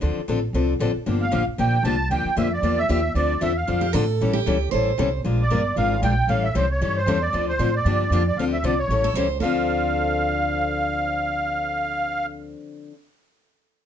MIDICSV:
0, 0, Header, 1, 6, 480
1, 0, Start_track
1, 0, Key_signature, -1, "minor"
1, 0, Tempo, 260756
1, 46, Time_signature, 4, 2, 24, 8
1, 25506, End_track
2, 0, Start_track
2, 0, Title_t, "Accordion"
2, 0, Program_c, 0, 21
2, 2233, Note_on_c, 0, 77, 88
2, 2677, Note_off_c, 0, 77, 0
2, 2943, Note_on_c, 0, 79, 99
2, 3378, Note_off_c, 0, 79, 0
2, 3389, Note_on_c, 0, 81, 99
2, 3839, Note_off_c, 0, 81, 0
2, 3887, Note_on_c, 0, 79, 90
2, 4329, Note_off_c, 0, 79, 0
2, 4376, Note_on_c, 0, 76, 88
2, 4643, Note_off_c, 0, 76, 0
2, 4661, Note_on_c, 0, 74, 84
2, 5126, Note_on_c, 0, 76, 96
2, 5137, Note_off_c, 0, 74, 0
2, 5759, Note_off_c, 0, 76, 0
2, 5804, Note_on_c, 0, 74, 88
2, 6294, Note_on_c, 0, 76, 87
2, 6295, Note_off_c, 0, 74, 0
2, 6562, Note_off_c, 0, 76, 0
2, 6568, Note_on_c, 0, 77, 72
2, 7200, Note_off_c, 0, 77, 0
2, 9983, Note_on_c, 0, 74, 90
2, 10590, Note_off_c, 0, 74, 0
2, 10632, Note_on_c, 0, 77, 94
2, 11063, Note_off_c, 0, 77, 0
2, 11110, Note_on_c, 0, 79, 98
2, 11583, Note_on_c, 0, 77, 93
2, 11588, Note_off_c, 0, 79, 0
2, 11847, Note_off_c, 0, 77, 0
2, 11848, Note_on_c, 0, 76, 90
2, 12055, Note_off_c, 0, 76, 0
2, 12071, Note_on_c, 0, 72, 78
2, 12306, Note_off_c, 0, 72, 0
2, 12356, Note_on_c, 0, 73, 81
2, 12530, Note_off_c, 0, 73, 0
2, 12571, Note_on_c, 0, 73, 86
2, 12821, Note_off_c, 0, 73, 0
2, 12828, Note_on_c, 0, 72, 91
2, 13283, Note_on_c, 0, 74, 95
2, 13302, Note_off_c, 0, 72, 0
2, 13723, Note_off_c, 0, 74, 0
2, 13784, Note_on_c, 0, 72, 86
2, 14261, Note_off_c, 0, 72, 0
2, 14274, Note_on_c, 0, 74, 92
2, 15204, Note_off_c, 0, 74, 0
2, 15232, Note_on_c, 0, 74, 91
2, 15428, Note_off_c, 0, 74, 0
2, 15428, Note_on_c, 0, 77, 87
2, 15543, Note_off_c, 0, 77, 0
2, 15694, Note_on_c, 0, 76, 81
2, 15899, Note_off_c, 0, 76, 0
2, 15924, Note_on_c, 0, 74, 78
2, 16178, Note_on_c, 0, 73, 79
2, 16179, Note_off_c, 0, 74, 0
2, 16808, Note_off_c, 0, 73, 0
2, 17338, Note_on_c, 0, 77, 87
2, 22570, Note_off_c, 0, 77, 0
2, 25506, End_track
3, 0, Start_track
3, 0, Title_t, "Steel-string acoustic guitar"
3, 0, Program_c, 1, 25
3, 7015, Note_on_c, 1, 67, 85
3, 7232, Note_off_c, 1, 67, 0
3, 7232, Note_on_c, 1, 69, 87
3, 7970, Note_off_c, 1, 69, 0
3, 7977, Note_on_c, 1, 67, 86
3, 8624, Note_off_c, 1, 67, 0
3, 8673, Note_on_c, 1, 72, 87
3, 9568, Note_off_c, 1, 72, 0
3, 16644, Note_on_c, 1, 69, 91
3, 16851, Note_off_c, 1, 69, 0
3, 16851, Note_on_c, 1, 72, 93
3, 17299, Note_off_c, 1, 72, 0
3, 17306, Note_on_c, 1, 69, 69
3, 23066, Note_off_c, 1, 69, 0
3, 25506, End_track
4, 0, Start_track
4, 0, Title_t, "Steel-string acoustic guitar"
4, 0, Program_c, 2, 25
4, 20, Note_on_c, 2, 50, 62
4, 32, Note_on_c, 2, 53, 58
4, 34, Note_on_c, 2, 60, 70
4, 37, Note_on_c, 2, 62, 63
4, 44, Note_on_c, 2, 69, 64
4, 365, Note_off_c, 2, 50, 0
4, 371, Note_off_c, 2, 53, 0
4, 372, Note_off_c, 2, 60, 0
4, 373, Note_off_c, 2, 62, 0
4, 377, Note_off_c, 2, 69, 0
4, 513, Note_on_c, 2, 50, 70
4, 516, Note_on_c, 2, 53, 75
4, 529, Note_on_c, 2, 62, 75
4, 531, Note_on_c, 2, 60, 76
4, 537, Note_on_c, 2, 69, 80
4, 704, Note_off_c, 2, 50, 0
4, 705, Note_off_c, 2, 53, 0
4, 712, Note_off_c, 2, 62, 0
4, 713, Note_off_c, 2, 60, 0
4, 716, Note_off_c, 2, 69, 0
4, 1000, Note_on_c, 2, 50, 62
4, 1003, Note_on_c, 2, 53, 70
4, 1007, Note_on_c, 2, 60, 65
4, 1013, Note_on_c, 2, 62, 62
4, 1015, Note_on_c, 2, 69, 74
4, 1334, Note_off_c, 2, 50, 0
4, 1336, Note_off_c, 2, 53, 0
4, 1337, Note_off_c, 2, 60, 0
4, 1340, Note_off_c, 2, 62, 0
4, 1341, Note_off_c, 2, 69, 0
4, 1478, Note_on_c, 2, 50, 81
4, 1481, Note_on_c, 2, 53, 88
4, 1487, Note_on_c, 2, 62, 91
4, 1489, Note_on_c, 2, 69, 98
4, 1490, Note_on_c, 2, 60, 92
4, 1665, Note_off_c, 2, 50, 0
4, 1667, Note_off_c, 2, 53, 0
4, 1670, Note_off_c, 2, 62, 0
4, 1671, Note_off_c, 2, 60, 0
4, 1671, Note_off_c, 2, 69, 0
4, 1955, Note_on_c, 2, 50, 60
4, 1955, Note_on_c, 2, 53, 62
4, 1960, Note_on_c, 2, 62, 61
4, 1961, Note_on_c, 2, 58, 64
4, 1971, Note_on_c, 2, 67, 62
4, 2290, Note_off_c, 2, 53, 0
4, 2291, Note_off_c, 2, 50, 0
4, 2293, Note_off_c, 2, 58, 0
4, 2293, Note_off_c, 2, 62, 0
4, 2298, Note_off_c, 2, 67, 0
4, 2418, Note_on_c, 2, 50, 78
4, 2425, Note_on_c, 2, 53, 83
4, 2432, Note_on_c, 2, 58, 87
4, 2436, Note_on_c, 2, 62, 88
4, 2446, Note_on_c, 2, 67, 81
4, 2614, Note_off_c, 2, 50, 0
4, 2617, Note_off_c, 2, 53, 0
4, 2621, Note_off_c, 2, 58, 0
4, 2623, Note_off_c, 2, 62, 0
4, 2628, Note_off_c, 2, 67, 0
4, 2913, Note_on_c, 2, 50, 56
4, 2915, Note_on_c, 2, 53, 62
4, 2917, Note_on_c, 2, 58, 67
4, 2928, Note_on_c, 2, 67, 72
4, 2934, Note_on_c, 2, 62, 70
4, 3249, Note_off_c, 2, 50, 0
4, 3249, Note_off_c, 2, 53, 0
4, 3251, Note_off_c, 2, 58, 0
4, 3256, Note_off_c, 2, 67, 0
4, 3259, Note_off_c, 2, 62, 0
4, 3397, Note_on_c, 2, 50, 78
4, 3405, Note_on_c, 2, 53, 80
4, 3407, Note_on_c, 2, 58, 85
4, 3413, Note_on_c, 2, 67, 97
4, 3415, Note_on_c, 2, 62, 93
4, 3583, Note_off_c, 2, 50, 0
4, 3587, Note_off_c, 2, 53, 0
4, 3588, Note_off_c, 2, 58, 0
4, 3591, Note_off_c, 2, 67, 0
4, 3592, Note_off_c, 2, 62, 0
4, 3879, Note_on_c, 2, 50, 65
4, 3883, Note_on_c, 2, 53, 63
4, 3887, Note_on_c, 2, 58, 67
4, 3887, Note_on_c, 2, 62, 67
4, 3893, Note_on_c, 2, 67, 59
4, 4211, Note_off_c, 2, 50, 0
4, 4213, Note_off_c, 2, 53, 0
4, 4215, Note_off_c, 2, 58, 0
4, 4215, Note_off_c, 2, 62, 0
4, 4218, Note_off_c, 2, 67, 0
4, 4355, Note_on_c, 2, 50, 84
4, 4365, Note_on_c, 2, 53, 90
4, 4370, Note_on_c, 2, 58, 91
4, 4374, Note_on_c, 2, 62, 80
4, 4382, Note_on_c, 2, 67, 91
4, 4542, Note_off_c, 2, 50, 0
4, 4547, Note_off_c, 2, 53, 0
4, 4549, Note_off_c, 2, 58, 0
4, 4551, Note_off_c, 2, 62, 0
4, 4555, Note_off_c, 2, 67, 0
4, 4838, Note_on_c, 2, 50, 69
4, 4845, Note_on_c, 2, 53, 66
4, 4850, Note_on_c, 2, 58, 66
4, 4859, Note_on_c, 2, 62, 68
4, 4866, Note_on_c, 2, 67, 76
4, 5170, Note_off_c, 2, 50, 0
4, 5174, Note_off_c, 2, 53, 0
4, 5176, Note_off_c, 2, 58, 0
4, 5181, Note_off_c, 2, 62, 0
4, 5184, Note_off_c, 2, 67, 0
4, 5323, Note_on_c, 2, 50, 93
4, 5328, Note_on_c, 2, 58, 99
4, 5334, Note_on_c, 2, 62, 94
4, 5336, Note_on_c, 2, 53, 89
4, 5340, Note_on_c, 2, 67, 108
4, 5505, Note_off_c, 2, 50, 0
4, 5508, Note_off_c, 2, 58, 0
4, 5511, Note_off_c, 2, 62, 0
4, 5512, Note_off_c, 2, 53, 0
4, 5514, Note_off_c, 2, 67, 0
4, 5802, Note_on_c, 2, 50, 59
4, 5809, Note_on_c, 2, 53, 64
4, 5819, Note_on_c, 2, 62, 70
4, 5820, Note_on_c, 2, 60, 67
4, 5829, Note_on_c, 2, 69, 70
4, 6132, Note_off_c, 2, 50, 0
4, 6136, Note_off_c, 2, 53, 0
4, 6141, Note_off_c, 2, 60, 0
4, 6141, Note_off_c, 2, 62, 0
4, 6146, Note_off_c, 2, 69, 0
4, 6278, Note_on_c, 2, 50, 77
4, 6284, Note_on_c, 2, 53, 78
4, 6287, Note_on_c, 2, 62, 94
4, 6293, Note_on_c, 2, 60, 83
4, 6298, Note_on_c, 2, 69, 86
4, 6463, Note_off_c, 2, 50, 0
4, 6466, Note_off_c, 2, 53, 0
4, 6467, Note_off_c, 2, 62, 0
4, 6470, Note_off_c, 2, 60, 0
4, 6473, Note_off_c, 2, 69, 0
4, 6763, Note_on_c, 2, 50, 60
4, 6769, Note_on_c, 2, 60, 70
4, 6770, Note_on_c, 2, 53, 62
4, 6779, Note_on_c, 2, 62, 73
4, 6782, Note_on_c, 2, 69, 71
4, 7093, Note_off_c, 2, 50, 0
4, 7096, Note_off_c, 2, 53, 0
4, 7096, Note_off_c, 2, 60, 0
4, 7101, Note_off_c, 2, 62, 0
4, 7102, Note_off_c, 2, 69, 0
4, 7254, Note_on_c, 2, 50, 93
4, 7255, Note_on_c, 2, 53, 91
4, 7264, Note_on_c, 2, 60, 96
4, 7267, Note_on_c, 2, 62, 97
4, 7269, Note_on_c, 2, 69, 85
4, 7431, Note_off_c, 2, 50, 0
4, 7431, Note_off_c, 2, 53, 0
4, 7436, Note_off_c, 2, 60, 0
4, 7438, Note_off_c, 2, 62, 0
4, 7438, Note_off_c, 2, 69, 0
4, 7752, Note_on_c, 2, 52, 67
4, 7758, Note_on_c, 2, 55, 72
4, 7764, Note_on_c, 2, 61, 70
4, 7772, Note_on_c, 2, 69, 66
4, 7774, Note_on_c, 2, 64, 68
4, 8067, Note_off_c, 2, 52, 0
4, 8070, Note_off_c, 2, 55, 0
4, 8073, Note_off_c, 2, 61, 0
4, 8077, Note_off_c, 2, 69, 0
4, 8079, Note_off_c, 2, 64, 0
4, 8213, Note_on_c, 2, 52, 83
4, 8226, Note_on_c, 2, 55, 82
4, 8228, Note_on_c, 2, 61, 80
4, 8232, Note_on_c, 2, 69, 94
4, 8233, Note_on_c, 2, 64, 83
4, 8391, Note_off_c, 2, 52, 0
4, 8397, Note_off_c, 2, 55, 0
4, 8398, Note_off_c, 2, 61, 0
4, 8400, Note_off_c, 2, 64, 0
4, 8400, Note_off_c, 2, 69, 0
4, 8695, Note_on_c, 2, 52, 61
4, 8701, Note_on_c, 2, 55, 63
4, 8707, Note_on_c, 2, 61, 59
4, 8720, Note_on_c, 2, 64, 68
4, 8724, Note_on_c, 2, 69, 70
4, 9019, Note_off_c, 2, 52, 0
4, 9022, Note_off_c, 2, 55, 0
4, 9025, Note_off_c, 2, 61, 0
4, 9031, Note_off_c, 2, 64, 0
4, 9034, Note_off_c, 2, 69, 0
4, 9163, Note_on_c, 2, 52, 82
4, 9175, Note_on_c, 2, 55, 82
4, 9184, Note_on_c, 2, 64, 92
4, 9185, Note_on_c, 2, 69, 91
4, 9187, Note_on_c, 2, 61, 96
4, 9346, Note_off_c, 2, 52, 0
4, 9352, Note_off_c, 2, 55, 0
4, 9356, Note_off_c, 2, 64, 0
4, 9357, Note_off_c, 2, 61, 0
4, 9357, Note_off_c, 2, 69, 0
4, 9654, Note_on_c, 2, 53, 63
4, 9658, Note_on_c, 2, 56, 62
4, 9670, Note_on_c, 2, 62, 60
4, 9670, Note_on_c, 2, 65, 65
4, 9677, Note_on_c, 2, 70, 72
4, 9979, Note_off_c, 2, 53, 0
4, 9981, Note_off_c, 2, 56, 0
4, 9987, Note_off_c, 2, 62, 0
4, 9987, Note_off_c, 2, 65, 0
4, 9990, Note_off_c, 2, 70, 0
4, 10130, Note_on_c, 2, 53, 75
4, 10135, Note_on_c, 2, 56, 81
4, 10142, Note_on_c, 2, 62, 88
4, 10143, Note_on_c, 2, 65, 83
4, 10151, Note_on_c, 2, 70, 89
4, 10309, Note_off_c, 2, 53, 0
4, 10312, Note_off_c, 2, 56, 0
4, 10316, Note_off_c, 2, 62, 0
4, 10316, Note_off_c, 2, 65, 0
4, 10320, Note_off_c, 2, 70, 0
4, 10612, Note_on_c, 2, 53, 62
4, 10618, Note_on_c, 2, 56, 65
4, 10620, Note_on_c, 2, 62, 72
4, 10628, Note_on_c, 2, 65, 68
4, 10635, Note_on_c, 2, 70, 74
4, 10938, Note_off_c, 2, 53, 0
4, 10941, Note_off_c, 2, 56, 0
4, 10942, Note_off_c, 2, 62, 0
4, 10946, Note_off_c, 2, 65, 0
4, 10950, Note_off_c, 2, 70, 0
4, 11093, Note_on_c, 2, 53, 76
4, 11096, Note_on_c, 2, 62, 87
4, 11097, Note_on_c, 2, 56, 90
4, 11105, Note_on_c, 2, 65, 96
4, 11105, Note_on_c, 2, 70, 89
4, 11271, Note_off_c, 2, 53, 0
4, 11273, Note_off_c, 2, 56, 0
4, 11273, Note_off_c, 2, 62, 0
4, 11277, Note_off_c, 2, 65, 0
4, 11277, Note_off_c, 2, 70, 0
4, 11571, Note_on_c, 2, 52, 64
4, 11574, Note_on_c, 2, 55, 65
4, 11579, Note_on_c, 2, 61, 71
4, 11580, Note_on_c, 2, 64, 72
4, 11595, Note_on_c, 2, 69, 74
4, 11898, Note_off_c, 2, 52, 0
4, 11899, Note_off_c, 2, 55, 0
4, 11902, Note_off_c, 2, 61, 0
4, 11902, Note_off_c, 2, 64, 0
4, 11910, Note_off_c, 2, 69, 0
4, 12058, Note_on_c, 2, 52, 80
4, 12058, Note_on_c, 2, 55, 85
4, 12067, Note_on_c, 2, 64, 96
4, 12068, Note_on_c, 2, 61, 84
4, 12075, Note_on_c, 2, 69, 92
4, 12234, Note_off_c, 2, 52, 0
4, 12234, Note_off_c, 2, 55, 0
4, 12238, Note_off_c, 2, 64, 0
4, 12239, Note_off_c, 2, 61, 0
4, 12243, Note_off_c, 2, 69, 0
4, 12545, Note_on_c, 2, 52, 69
4, 12548, Note_on_c, 2, 55, 67
4, 12551, Note_on_c, 2, 61, 65
4, 12556, Note_on_c, 2, 64, 76
4, 12562, Note_on_c, 2, 69, 76
4, 12865, Note_off_c, 2, 52, 0
4, 12866, Note_off_c, 2, 55, 0
4, 12868, Note_off_c, 2, 61, 0
4, 12870, Note_off_c, 2, 64, 0
4, 12874, Note_off_c, 2, 69, 0
4, 13019, Note_on_c, 2, 52, 93
4, 13031, Note_on_c, 2, 55, 86
4, 13032, Note_on_c, 2, 61, 98
4, 13039, Note_on_c, 2, 69, 98
4, 13042, Note_on_c, 2, 64, 97
4, 13195, Note_off_c, 2, 52, 0
4, 13201, Note_off_c, 2, 55, 0
4, 13201, Note_off_c, 2, 61, 0
4, 13205, Note_off_c, 2, 69, 0
4, 13206, Note_off_c, 2, 64, 0
4, 13489, Note_on_c, 2, 50, 66
4, 13503, Note_on_c, 2, 60, 66
4, 13509, Note_on_c, 2, 53, 64
4, 13513, Note_on_c, 2, 62, 71
4, 13517, Note_on_c, 2, 69, 72
4, 13818, Note_off_c, 2, 50, 0
4, 13825, Note_off_c, 2, 60, 0
4, 13828, Note_off_c, 2, 53, 0
4, 13829, Note_off_c, 2, 62, 0
4, 13831, Note_off_c, 2, 69, 0
4, 13976, Note_on_c, 2, 50, 84
4, 13980, Note_on_c, 2, 53, 94
4, 13983, Note_on_c, 2, 62, 92
4, 13995, Note_on_c, 2, 60, 81
4, 14002, Note_on_c, 2, 69, 92
4, 14153, Note_off_c, 2, 50, 0
4, 14156, Note_off_c, 2, 53, 0
4, 14157, Note_off_c, 2, 62, 0
4, 14163, Note_off_c, 2, 60, 0
4, 14167, Note_off_c, 2, 69, 0
4, 14463, Note_on_c, 2, 50, 63
4, 14465, Note_on_c, 2, 58, 65
4, 14471, Note_on_c, 2, 53, 76
4, 14472, Note_on_c, 2, 62, 80
4, 14483, Note_on_c, 2, 67, 69
4, 14785, Note_off_c, 2, 50, 0
4, 14786, Note_off_c, 2, 58, 0
4, 14789, Note_off_c, 2, 53, 0
4, 14790, Note_off_c, 2, 62, 0
4, 14795, Note_off_c, 2, 67, 0
4, 14941, Note_on_c, 2, 50, 78
4, 14952, Note_on_c, 2, 53, 97
4, 14962, Note_on_c, 2, 58, 86
4, 14966, Note_on_c, 2, 62, 95
4, 14971, Note_on_c, 2, 67, 109
4, 15116, Note_off_c, 2, 50, 0
4, 15122, Note_off_c, 2, 53, 0
4, 15127, Note_off_c, 2, 58, 0
4, 15129, Note_off_c, 2, 62, 0
4, 15131, Note_off_c, 2, 67, 0
4, 15447, Note_on_c, 2, 50, 59
4, 15450, Note_on_c, 2, 53, 65
4, 15451, Note_on_c, 2, 60, 73
4, 15452, Note_on_c, 2, 62, 73
4, 15471, Note_on_c, 2, 69, 70
4, 15757, Note_off_c, 2, 50, 0
4, 15759, Note_off_c, 2, 53, 0
4, 15759, Note_off_c, 2, 60, 0
4, 15760, Note_off_c, 2, 62, 0
4, 15769, Note_off_c, 2, 69, 0
4, 15901, Note_on_c, 2, 50, 85
4, 15906, Note_on_c, 2, 53, 94
4, 15912, Note_on_c, 2, 69, 87
4, 15913, Note_on_c, 2, 60, 84
4, 15914, Note_on_c, 2, 62, 89
4, 16077, Note_off_c, 2, 50, 0
4, 16079, Note_off_c, 2, 53, 0
4, 16082, Note_off_c, 2, 69, 0
4, 16083, Note_off_c, 2, 60, 0
4, 16083, Note_off_c, 2, 62, 0
4, 16391, Note_on_c, 2, 52, 67
4, 16396, Note_on_c, 2, 55, 65
4, 16410, Note_on_c, 2, 61, 67
4, 16410, Note_on_c, 2, 64, 70
4, 16417, Note_on_c, 2, 69, 72
4, 16710, Note_off_c, 2, 52, 0
4, 16712, Note_off_c, 2, 55, 0
4, 16719, Note_off_c, 2, 61, 0
4, 16719, Note_off_c, 2, 64, 0
4, 16722, Note_off_c, 2, 69, 0
4, 16869, Note_on_c, 2, 55, 78
4, 16871, Note_on_c, 2, 52, 84
4, 16878, Note_on_c, 2, 61, 87
4, 16882, Note_on_c, 2, 64, 84
4, 16892, Note_on_c, 2, 69, 93
4, 17041, Note_off_c, 2, 55, 0
4, 17042, Note_off_c, 2, 52, 0
4, 17046, Note_off_c, 2, 61, 0
4, 17048, Note_off_c, 2, 64, 0
4, 17053, Note_off_c, 2, 69, 0
4, 17330, Note_on_c, 2, 50, 79
4, 17349, Note_on_c, 2, 53, 84
4, 17364, Note_on_c, 2, 60, 82
4, 17376, Note_on_c, 2, 62, 83
4, 17392, Note_on_c, 2, 69, 87
4, 23773, Note_off_c, 2, 50, 0
4, 23792, Note_off_c, 2, 53, 0
4, 23807, Note_off_c, 2, 60, 0
4, 23818, Note_off_c, 2, 62, 0
4, 23835, Note_off_c, 2, 69, 0
4, 25506, End_track
5, 0, Start_track
5, 0, Title_t, "Upright bass"
5, 0, Program_c, 3, 32
5, 40, Note_on_c, 3, 38, 79
5, 292, Note_off_c, 3, 38, 0
5, 511, Note_on_c, 3, 33, 87
5, 963, Note_off_c, 3, 33, 0
5, 974, Note_on_c, 3, 36, 80
5, 1449, Note_off_c, 3, 36, 0
5, 1460, Note_on_c, 3, 33, 88
5, 1719, Note_off_c, 3, 33, 0
5, 1951, Note_on_c, 3, 31, 86
5, 2420, Note_off_c, 3, 31, 0
5, 2450, Note_on_c, 3, 33, 84
5, 2695, Note_off_c, 3, 33, 0
5, 2907, Note_on_c, 3, 34, 81
5, 3352, Note_off_c, 3, 34, 0
5, 3363, Note_on_c, 3, 36, 97
5, 3845, Note_off_c, 3, 36, 0
5, 3858, Note_on_c, 3, 38, 77
5, 4117, Note_off_c, 3, 38, 0
5, 4347, Note_on_c, 3, 41, 86
5, 4810, Note_off_c, 3, 41, 0
5, 4821, Note_on_c, 3, 40, 81
5, 5294, Note_off_c, 3, 40, 0
5, 5322, Note_on_c, 3, 39, 93
5, 5775, Note_off_c, 3, 39, 0
5, 5786, Note_on_c, 3, 38, 78
5, 6257, Note_off_c, 3, 38, 0
5, 6272, Note_on_c, 3, 40, 87
5, 6740, Note_off_c, 3, 40, 0
5, 6777, Note_on_c, 3, 41, 89
5, 7233, Note_off_c, 3, 41, 0
5, 7246, Note_on_c, 3, 45, 94
5, 7707, Note_off_c, 3, 45, 0
5, 7740, Note_on_c, 3, 33, 79
5, 8194, Note_off_c, 3, 33, 0
5, 8212, Note_on_c, 3, 37, 84
5, 8671, Note_off_c, 3, 37, 0
5, 8694, Note_on_c, 3, 33, 82
5, 9152, Note_off_c, 3, 33, 0
5, 9171, Note_on_c, 3, 36, 91
5, 9630, Note_off_c, 3, 36, 0
5, 9648, Note_on_c, 3, 34, 80
5, 10109, Note_off_c, 3, 34, 0
5, 10126, Note_on_c, 3, 31, 80
5, 10588, Note_off_c, 3, 31, 0
5, 10602, Note_on_c, 3, 32, 84
5, 11066, Note_off_c, 3, 32, 0
5, 11078, Note_on_c, 3, 34, 96
5, 11531, Note_off_c, 3, 34, 0
5, 11542, Note_on_c, 3, 33, 86
5, 12016, Note_off_c, 3, 33, 0
5, 12050, Note_on_c, 3, 36, 86
5, 12510, Note_off_c, 3, 36, 0
5, 12536, Note_on_c, 3, 43, 81
5, 12987, Note_off_c, 3, 43, 0
5, 12998, Note_on_c, 3, 40, 99
5, 13465, Note_off_c, 3, 40, 0
5, 13489, Note_on_c, 3, 38, 93
5, 13950, Note_off_c, 3, 38, 0
5, 13966, Note_on_c, 3, 45, 85
5, 14429, Note_off_c, 3, 45, 0
5, 14447, Note_on_c, 3, 43, 90
5, 14898, Note_off_c, 3, 43, 0
5, 14909, Note_on_c, 3, 41, 96
5, 15381, Note_off_c, 3, 41, 0
5, 15394, Note_on_c, 3, 38, 87
5, 15863, Note_off_c, 3, 38, 0
5, 15875, Note_on_c, 3, 36, 86
5, 16332, Note_off_c, 3, 36, 0
5, 16343, Note_on_c, 3, 33, 84
5, 16808, Note_off_c, 3, 33, 0
5, 16819, Note_on_c, 3, 37, 95
5, 17286, Note_off_c, 3, 37, 0
5, 17297, Note_on_c, 3, 38, 83
5, 23057, Note_off_c, 3, 38, 0
5, 25506, End_track
6, 0, Start_track
6, 0, Title_t, "Muted upright bass strokes"
6, 304, Note_on_c, 9, 29, 40
6, 489, Note_off_c, 9, 29, 0
6, 1746, Note_on_c, 9, 29, 40
6, 1930, Note_off_c, 9, 29, 0
6, 2703, Note_on_c, 9, 29, 38
6, 2887, Note_off_c, 9, 29, 0
6, 4126, Note_on_c, 9, 29, 42
6, 4310, Note_off_c, 9, 29, 0
6, 25506, End_track
0, 0, End_of_file